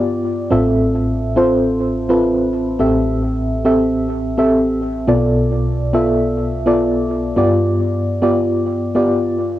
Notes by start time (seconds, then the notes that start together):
Already playing: G2 B3 F4 G4 D5
0.50 A1 A2 C4 F4 A4 E5
1.36 C4 F4 A4 C5
2.09 C4 F4 A4 B4
2.79 A1 A2 C4 G4 A4 E5
3.65 C4 G4 A4 E5
4.38 C4 G4 A4 E5
5.07 B1 B2 B3 F4 A4 D5
5.93 B3 F4 A4 E5
6.66 B3 F4 A4 D5
7.36 G2 B3 F4 G4 D5
8.22 B3 F4 G4 D5
8.95 B3 F4 G4 D5